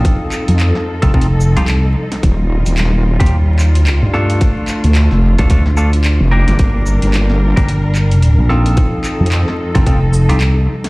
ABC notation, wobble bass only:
X:1
M:4/4
L:1/16
Q:"Swing 16ths" 1/4=110
K:Fmix
V:1 name="Wobble bass" clef=bass
z3 F,,2 z8 z3 | E,,,3 E,,,4 z8 z | z3 D,,2 F,,,2 z6 F,,,2 G,,, | G,,,3 G,,,4 z8 z |
z3 F,,2 z8 z3 |]